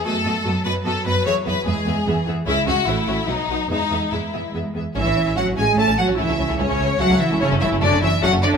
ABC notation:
X:1
M:3/4
L:1/16
Q:1/4=147
K:E
V:1 name="Violin section"
d2 d2 d2 d2 d2 d2 | e2 e2 e2 e2 e2 e2 | e2 e2 f2 f2 f2 f2 | e2 e2 e2 e2 e2 e2 |
[K:A] e4 f2 g2 a2 f2 | e4 c4 f2 e2 | c2 e2 d2 e2 f2 d2 |]
V:2 name="Viola section"
[B,F]2 [B,F]2 [B,F]2 [B,F]2 [B,F]2 [B,F]2 | [B,G]2 [B,G]2 [B,G]2 [B,G]2 [B,G]2 [B,G]2 | [CG]2 [CG]2 [CF]2 [CF]2 [B,F]2 [B,F]2 | [B,G]2 [B,G]2 [B,G]2 [B,G]2 [B,G]2 [B,G]2 |
[K:A] E4 F2 G2 A2 F2 | E4 C4 F2 E2 | C2 E2 D2 E2 F2 D2 |]
V:3 name="Violin section"
A6 B2 A2 B2 | c2 B2 G6 z2 | E2 F2 E4 D4 | D4 E4 z4 |
[K:A] C C C C C C C z C C z C | [A,C] [A,C] [A,C] [A,C] [A,C] [A,C] [A,C] z [A,C] [A,C] z [A,C] | [A,C] [A,C] [A,C] [A,C] [A,C] [A,C] [A,C] z [A,C] [A,C] z [A,C] |]
V:4 name="Cello section" clef=bass
A,4 F,8- | F,4 G,4 E,4 | G,4 A,4 F,4 | G,8- G,2 z2 |
[K:A] E,4 F,2 G,2 A,2 F,2 | E,4 C,4 F,2 E,2 | C,2 E,2 D,2 E,2 F,2 D,2 |]
V:5 name="Double bass section" clef=bass
F,,2 F,,2 F,,2 F,,2 F,,2 F,,2 | E,,2 E,,2 E,,2 E,,2 E,,2 E,,2 | C,,2 C,,2 A,,,2 A,,,2 B,,,2 B,,,2 | E,,2 E,,2 E,,2 E,,2 E,,2 E,,2 |
[K:A] A,,, A,,, A,,, A,,, A,,, A,,, A,,, z A,,, A,,, z A,,, | C,, C,, C,, C,, C,, C,, C,, z C,, C,, z C,, | F,,, F,,, F,,, F,,, F,,, F,,, F,,, z F,,, F,,, z F,,, |]